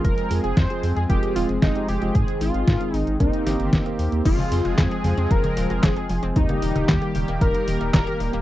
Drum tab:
CC |----------------|----------------|x---------------|----------------|
HH |xxoxxxoxxxoxxxox|xxoxxxoxxxoxxxox|xxoxxxoxxxoxxxox|xxoxxxoxxxoxxxox|
CP |----------------|----------------|----x-------x---|----x-------x---|
SD |----o-------o---|----o-----o-o---|----o-------o---|----o-------o---|
CG |----------------|----------------|-o----o--o------|-o-o--o---------|
BD |o---o---o---o---|o---o---o---o---|o---o---o---o---|o---o---o---o---|